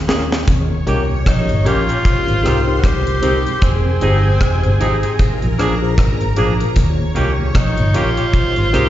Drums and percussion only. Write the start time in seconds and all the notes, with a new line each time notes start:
0.09 snare
0.32 snare
0.48 kick, closed hi-hat
0.87 closed hi-hat
1.26 kick, cross-stick, closed hi-hat
1.49 closed hi-hat
1.66 closed hi-hat
1.89 closed hi-hat
2.05 kick, closed hi-hat
2.28 closed hi-hat
2.46 cross-stick, closed hi-hat
2.84 kick, cross-stick, closed hi-hat
3.07 closed hi-hat
3.23 closed hi-hat
3.47 closed hi-hat
3.62 kick, closed hi-hat
4.01 closed hi-hat
4.41 kick, cross-stick, closed hi-hat
4.63 closed hi-hat
4.81 closed hi-hat
5.03 closed hi-hat
5.19 kick, closed hi-hat
5.42 closed hi-hat
5.59 cross-stick, closed hi-hat
5.98 kick, cross-stick, closed hi-hat
6.21 closed hi-hat
6.36 closed hi-hat
6.60 closed hi-hat
6.76 kick, closed hi-hat
7.16 closed hi-hat
7.55 kick, cross-stick, closed hi-hat
7.77 closed hi-hat
7.94 closed hi-hat
8.17 closed hi-hat
8.33 kick, closed hi-hat
8.56 closed hi-hat
8.74 cross-stick, closed hi-hat